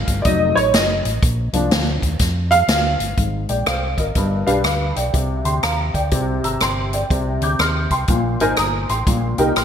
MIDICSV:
0, 0, Header, 1, 4, 480
1, 0, Start_track
1, 0, Tempo, 489796
1, 1201, Time_signature, 4, 2, 24, 8
1, 9453, End_track
2, 0, Start_track
2, 0, Title_t, "Upright piano"
2, 0, Program_c, 0, 0
2, 0, Note_on_c, 0, 77, 123
2, 217, Note_on_c, 0, 74, 68
2, 233, Note_off_c, 0, 77, 0
2, 246, Note_on_c, 0, 75, 96
2, 251, Note_on_c, 0, 54, 59
2, 253, Note_off_c, 0, 74, 0
2, 256, Note_on_c, 0, 57, 46
2, 259, Note_on_c, 0, 63, 60
2, 544, Note_on_c, 0, 73, 91
2, 561, Note_off_c, 0, 75, 0
2, 724, Note_on_c, 0, 75, 76
2, 725, Note_off_c, 0, 73, 0
2, 993, Note_off_c, 0, 54, 0
2, 996, Note_off_c, 0, 57, 0
2, 997, Note_off_c, 0, 63, 0
2, 1168, Note_off_c, 0, 75, 0
2, 1503, Note_on_c, 0, 53, 54
2, 1505, Note_on_c, 0, 58, 49
2, 1513, Note_on_c, 0, 62, 60
2, 1784, Note_off_c, 0, 53, 0
2, 1786, Note_off_c, 0, 58, 0
2, 1790, Note_off_c, 0, 62, 0
2, 2457, Note_on_c, 0, 77, 111
2, 2618, Note_off_c, 0, 77, 0
2, 2632, Note_on_c, 0, 77, 95
2, 3079, Note_off_c, 0, 77, 0
2, 3112, Note_on_c, 0, 44, 50
2, 3422, Note_on_c, 0, 79, 59
2, 3426, Note_on_c, 0, 74, 45
2, 3585, Note_off_c, 0, 79, 0
2, 3587, Note_off_c, 0, 74, 0
2, 3597, Note_on_c, 0, 77, 57
2, 3601, Note_on_c, 0, 72, 46
2, 3860, Note_off_c, 0, 44, 0
2, 3887, Note_off_c, 0, 77, 0
2, 3889, Note_off_c, 0, 72, 0
2, 3906, Note_on_c, 0, 75, 53
2, 3914, Note_on_c, 0, 70, 41
2, 4080, Note_on_c, 0, 43, 65
2, 4360, Note_off_c, 0, 75, 0
2, 4364, Note_off_c, 0, 70, 0
2, 4376, Note_on_c, 0, 62, 69
2, 4376, Note_on_c, 0, 71, 58
2, 4377, Note_on_c, 0, 77, 84
2, 4378, Note_on_c, 0, 67, 62
2, 4496, Note_off_c, 0, 62, 0
2, 4496, Note_off_c, 0, 71, 0
2, 4497, Note_off_c, 0, 67, 0
2, 4497, Note_off_c, 0, 77, 0
2, 4556, Note_on_c, 0, 77, 60
2, 4563, Note_on_c, 0, 71, 51
2, 4825, Note_off_c, 0, 43, 0
2, 4847, Note_off_c, 0, 77, 0
2, 4851, Note_off_c, 0, 71, 0
2, 4863, Note_on_c, 0, 79, 56
2, 4871, Note_on_c, 0, 74, 43
2, 5028, Note_on_c, 0, 48, 56
2, 5319, Note_off_c, 0, 79, 0
2, 5323, Note_off_c, 0, 74, 0
2, 5344, Note_on_c, 0, 84, 56
2, 5346, Note_on_c, 0, 79, 43
2, 5507, Note_off_c, 0, 84, 0
2, 5508, Note_off_c, 0, 79, 0
2, 5516, Note_on_c, 0, 82, 57
2, 5520, Note_on_c, 0, 77, 50
2, 5781, Note_off_c, 0, 48, 0
2, 5808, Note_off_c, 0, 82, 0
2, 5810, Note_off_c, 0, 77, 0
2, 5821, Note_on_c, 0, 79, 52
2, 5827, Note_on_c, 0, 74, 39
2, 5994, Note_on_c, 0, 48, 66
2, 6279, Note_off_c, 0, 79, 0
2, 6282, Note_off_c, 0, 74, 0
2, 6311, Note_on_c, 0, 88, 51
2, 6318, Note_on_c, 0, 82, 44
2, 6472, Note_off_c, 0, 88, 0
2, 6476, Note_off_c, 0, 82, 0
2, 6488, Note_on_c, 0, 84, 59
2, 6491, Note_on_c, 0, 79, 45
2, 6745, Note_off_c, 0, 48, 0
2, 6776, Note_off_c, 0, 84, 0
2, 6777, Note_off_c, 0, 79, 0
2, 6795, Note_on_c, 0, 79, 54
2, 6802, Note_on_c, 0, 74, 46
2, 6965, Note_on_c, 0, 48, 60
2, 7248, Note_off_c, 0, 79, 0
2, 7252, Note_off_c, 0, 74, 0
2, 7278, Note_on_c, 0, 91, 54
2, 7287, Note_on_c, 0, 86, 49
2, 7438, Note_off_c, 0, 91, 0
2, 7442, Note_off_c, 0, 86, 0
2, 7449, Note_on_c, 0, 89, 52
2, 7454, Note_on_c, 0, 84, 52
2, 7713, Note_off_c, 0, 48, 0
2, 7738, Note_off_c, 0, 89, 0
2, 7741, Note_off_c, 0, 84, 0
2, 7757, Note_on_c, 0, 84, 54
2, 7763, Note_on_c, 0, 79, 45
2, 7932, Note_on_c, 0, 46, 68
2, 8211, Note_off_c, 0, 84, 0
2, 8214, Note_off_c, 0, 79, 0
2, 8242, Note_on_c, 0, 72, 67
2, 8243, Note_on_c, 0, 63, 73
2, 8244, Note_on_c, 0, 70, 72
2, 8245, Note_on_c, 0, 80, 70
2, 8355, Note_off_c, 0, 63, 0
2, 8355, Note_off_c, 0, 72, 0
2, 8356, Note_off_c, 0, 70, 0
2, 8356, Note_off_c, 0, 80, 0
2, 8411, Note_on_c, 0, 87, 54
2, 8416, Note_on_c, 0, 82, 50
2, 8679, Note_off_c, 0, 46, 0
2, 8701, Note_off_c, 0, 87, 0
2, 8704, Note_off_c, 0, 82, 0
2, 8720, Note_on_c, 0, 84, 51
2, 8727, Note_on_c, 0, 79, 45
2, 8896, Note_on_c, 0, 46, 63
2, 9174, Note_off_c, 0, 84, 0
2, 9178, Note_off_c, 0, 79, 0
2, 9197, Note_on_c, 0, 67, 65
2, 9197, Note_on_c, 0, 79, 78
2, 9201, Note_on_c, 0, 63, 70
2, 9201, Note_on_c, 0, 70, 64
2, 9314, Note_off_c, 0, 67, 0
2, 9314, Note_off_c, 0, 79, 0
2, 9316, Note_off_c, 0, 63, 0
2, 9316, Note_off_c, 0, 70, 0
2, 9374, Note_on_c, 0, 89, 58
2, 9378, Note_on_c, 0, 84, 45
2, 9453, Note_off_c, 0, 46, 0
2, 9453, Note_off_c, 0, 84, 0
2, 9453, Note_off_c, 0, 89, 0
2, 9453, End_track
3, 0, Start_track
3, 0, Title_t, "Fingered electric bass"
3, 0, Program_c, 1, 33
3, 74, Note_on_c, 1, 31, 93
3, 220, Note_off_c, 1, 31, 0
3, 245, Note_on_c, 1, 29, 123
3, 506, Note_off_c, 1, 29, 0
3, 542, Note_on_c, 1, 33, 71
3, 692, Note_off_c, 1, 33, 0
3, 716, Note_on_c, 1, 30, 87
3, 979, Note_off_c, 1, 30, 0
3, 1026, Note_on_c, 1, 33, 80
3, 1174, Note_off_c, 1, 33, 0
3, 1201, Note_on_c, 1, 34, 105
3, 1461, Note_off_c, 1, 34, 0
3, 1498, Note_on_c, 1, 36, 80
3, 1648, Note_off_c, 1, 36, 0
3, 1674, Note_on_c, 1, 38, 81
3, 1937, Note_off_c, 1, 38, 0
3, 1981, Note_on_c, 1, 39, 82
3, 2129, Note_off_c, 1, 39, 0
3, 2153, Note_on_c, 1, 41, 112
3, 2561, Note_off_c, 1, 41, 0
3, 2624, Note_on_c, 1, 38, 93
3, 2890, Note_off_c, 1, 38, 0
3, 2935, Note_on_c, 1, 31, 81
3, 3084, Note_off_c, 1, 31, 0
3, 3114, Note_on_c, 1, 32, 91
3, 3375, Note_off_c, 1, 32, 0
3, 3425, Note_on_c, 1, 34, 84
3, 3570, Note_off_c, 1, 34, 0
3, 3594, Note_on_c, 1, 36, 75
3, 3855, Note_off_c, 1, 36, 0
3, 3895, Note_on_c, 1, 32, 79
3, 4044, Note_off_c, 1, 32, 0
3, 4070, Note_on_c, 1, 31, 104
3, 4333, Note_off_c, 1, 31, 0
3, 4379, Note_on_c, 1, 35, 67
3, 4526, Note_off_c, 1, 35, 0
3, 4553, Note_on_c, 1, 38, 75
3, 4815, Note_off_c, 1, 38, 0
3, 4864, Note_on_c, 1, 35, 71
3, 5009, Note_off_c, 1, 35, 0
3, 5037, Note_on_c, 1, 36, 88
3, 5297, Note_off_c, 1, 36, 0
3, 5334, Note_on_c, 1, 38, 78
3, 5485, Note_off_c, 1, 38, 0
3, 5516, Note_on_c, 1, 39, 72
3, 5778, Note_off_c, 1, 39, 0
3, 5824, Note_on_c, 1, 38, 82
3, 5971, Note_off_c, 1, 38, 0
3, 5994, Note_on_c, 1, 36, 91
3, 6257, Note_off_c, 1, 36, 0
3, 6306, Note_on_c, 1, 32, 65
3, 6452, Note_off_c, 1, 32, 0
3, 6473, Note_on_c, 1, 31, 72
3, 6884, Note_off_c, 1, 31, 0
3, 6962, Note_on_c, 1, 36, 94
3, 7223, Note_off_c, 1, 36, 0
3, 7262, Note_on_c, 1, 38, 90
3, 7412, Note_off_c, 1, 38, 0
3, 7438, Note_on_c, 1, 39, 83
3, 7702, Note_off_c, 1, 39, 0
3, 7746, Note_on_c, 1, 36, 76
3, 7895, Note_off_c, 1, 36, 0
3, 7923, Note_on_c, 1, 34, 98
3, 8185, Note_off_c, 1, 34, 0
3, 8225, Note_on_c, 1, 32, 67
3, 8375, Note_off_c, 1, 32, 0
3, 8403, Note_on_c, 1, 31, 83
3, 8666, Note_off_c, 1, 31, 0
3, 8715, Note_on_c, 1, 33, 79
3, 8861, Note_off_c, 1, 33, 0
3, 8886, Note_on_c, 1, 34, 92
3, 9148, Note_off_c, 1, 34, 0
3, 9192, Note_on_c, 1, 36, 85
3, 9340, Note_off_c, 1, 36, 0
3, 9369, Note_on_c, 1, 34, 71
3, 9453, Note_off_c, 1, 34, 0
3, 9453, End_track
4, 0, Start_track
4, 0, Title_t, "Drums"
4, 74, Note_on_c, 9, 42, 69
4, 75, Note_on_c, 9, 36, 63
4, 172, Note_off_c, 9, 42, 0
4, 173, Note_off_c, 9, 36, 0
4, 242, Note_on_c, 9, 42, 93
4, 247, Note_on_c, 9, 36, 106
4, 340, Note_off_c, 9, 42, 0
4, 345, Note_off_c, 9, 36, 0
4, 559, Note_on_c, 9, 42, 84
4, 657, Note_off_c, 9, 42, 0
4, 721, Note_on_c, 9, 42, 97
4, 727, Note_on_c, 9, 38, 99
4, 819, Note_off_c, 9, 42, 0
4, 825, Note_off_c, 9, 38, 0
4, 1030, Note_on_c, 9, 42, 85
4, 1128, Note_off_c, 9, 42, 0
4, 1201, Note_on_c, 9, 36, 112
4, 1202, Note_on_c, 9, 42, 81
4, 1299, Note_off_c, 9, 36, 0
4, 1300, Note_off_c, 9, 42, 0
4, 1503, Note_on_c, 9, 42, 83
4, 1601, Note_off_c, 9, 42, 0
4, 1677, Note_on_c, 9, 42, 83
4, 1682, Note_on_c, 9, 38, 118
4, 1775, Note_off_c, 9, 42, 0
4, 1780, Note_off_c, 9, 38, 0
4, 1984, Note_on_c, 9, 36, 70
4, 1988, Note_on_c, 9, 42, 67
4, 2082, Note_off_c, 9, 36, 0
4, 2086, Note_off_c, 9, 42, 0
4, 2148, Note_on_c, 9, 42, 93
4, 2155, Note_on_c, 9, 36, 103
4, 2157, Note_on_c, 9, 38, 31
4, 2246, Note_off_c, 9, 42, 0
4, 2253, Note_off_c, 9, 36, 0
4, 2255, Note_off_c, 9, 38, 0
4, 2464, Note_on_c, 9, 42, 87
4, 2562, Note_off_c, 9, 42, 0
4, 2629, Note_on_c, 9, 42, 98
4, 2635, Note_on_c, 9, 38, 114
4, 2727, Note_off_c, 9, 42, 0
4, 2733, Note_off_c, 9, 38, 0
4, 2940, Note_on_c, 9, 42, 90
4, 3038, Note_off_c, 9, 42, 0
4, 3110, Note_on_c, 9, 42, 74
4, 3112, Note_on_c, 9, 36, 83
4, 3208, Note_off_c, 9, 42, 0
4, 3210, Note_off_c, 9, 36, 0
4, 3418, Note_on_c, 9, 42, 64
4, 3516, Note_off_c, 9, 42, 0
4, 3587, Note_on_c, 9, 42, 69
4, 3592, Note_on_c, 9, 37, 107
4, 3685, Note_off_c, 9, 42, 0
4, 3690, Note_off_c, 9, 37, 0
4, 3897, Note_on_c, 9, 36, 70
4, 3898, Note_on_c, 9, 42, 59
4, 3995, Note_off_c, 9, 36, 0
4, 3996, Note_off_c, 9, 42, 0
4, 4067, Note_on_c, 9, 42, 77
4, 4071, Note_on_c, 9, 36, 85
4, 4076, Note_on_c, 9, 37, 26
4, 4165, Note_off_c, 9, 42, 0
4, 4169, Note_off_c, 9, 36, 0
4, 4174, Note_off_c, 9, 37, 0
4, 4383, Note_on_c, 9, 42, 76
4, 4481, Note_off_c, 9, 42, 0
4, 4545, Note_on_c, 9, 42, 76
4, 4551, Note_on_c, 9, 37, 99
4, 4643, Note_off_c, 9, 42, 0
4, 4649, Note_off_c, 9, 37, 0
4, 4864, Note_on_c, 9, 42, 77
4, 4962, Note_off_c, 9, 42, 0
4, 5035, Note_on_c, 9, 36, 75
4, 5036, Note_on_c, 9, 42, 75
4, 5133, Note_off_c, 9, 36, 0
4, 5134, Note_off_c, 9, 42, 0
4, 5341, Note_on_c, 9, 42, 68
4, 5439, Note_off_c, 9, 42, 0
4, 5514, Note_on_c, 9, 42, 73
4, 5519, Note_on_c, 9, 37, 108
4, 5612, Note_off_c, 9, 42, 0
4, 5617, Note_off_c, 9, 37, 0
4, 5824, Note_on_c, 9, 36, 56
4, 5826, Note_on_c, 9, 42, 62
4, 5922, Note_off_c, 9, 36, 0
4, 5924, Note_off_c, 9, 42, 0
4, 5991, Note_on_c, 9, 42, 80
4, 5997, Note_on_c, 9, 36, 94
4, 6089, Note_off_c, 9, 42, 0
4, 6095, Note_off_c, 9, 36, 0
4, 6310, Note_on_c, 9, 42, 78
4, 6408, Note_off_c, 9, 42, 0
4, 6470, Note_on_c, 9, 42, 78
4, 6476, Note_on_c, 9, 37, 98
4, 6568, Note_off_c, 9, 42, 0
4, 6574, Note_off_c, 9, 37, 0
4, 6790, Note_on_c, 9, 42, 69
4, 6888, Note_off_c, 9, 42, 0
4, 6962, Note_on_c, 9, 36, 80
4, 6965, Note_on_c, 9, 42, 69
4, 7060, Note_off_c, 9, 36, 0
4, 7063, Note_off_c, 9, 42, 0
4, 7267, Note_on_c, 9, 42, 71
4, 7365, Note_off_c, 9, 42, 0
4, 7438, Note_on_c, 9, 42, 75
4, 7443, Note_on_c, 9, 37, 103
4, 7536, Note_off_c, 9, 42, 0
4, 7541, Note_off_c, 9, 37, 0
4, 7748, Note_on_c, 9, 36, 59
4, 7748, Note_on_c, 9, 42, 58
4, 7846, Note_off_c, 9, 36, 0
4, 7846, Note_off_c, 9, 42, 0
4, 7914, Note_on_c, 9, 42, 75
4, 7922, Note_on_c, 9, 36, 91
4, 8012, Note_off_c, 9, 42, 0
4, 8020, Note_off_c, 9, 36, 0
4, 8233, Note_on_c, 9, 42, 71
4, 8331, Note_off_c, 9, 42, 0
4, 8393, Note_on_c, 9, 42, 87
4, 8398, Note_on_c, 9, 37, 94
4, 8491, Note_off_c, 9, 42, 0
4, 8496, Note_off_c, 9, 37, 0
4, 8715, Note_on_c, 9, 42, 75
4, 8720, Note_on_c, 9, 37, 35
4, 8813, Note_off_c, 9, 42, 0
4, 8818, Note_off_c, 9, 37, 0
4, 8886, Note_on_c, 9, 36, 93
4, 8887, Note_on_c, 9, 42, 77
4, 8984, Note_off_c, 9, 36, 0
4, 8985, Note_off_c, 9, 42, 0
4, 9193, Note_on_c, 9, 42, 66
4, 9291, Note_off_c, 9, 42, 0
4, 9367, Note_on_c, 9, 42, 70
4, 9372, Note_on_c, 9, 37, 100
4, 9453, Note_off_c, 9, 37, 0
4, 9453, Note_off_c, 9, 42, 0
4, 9453, End_track
0, 0, End_of_file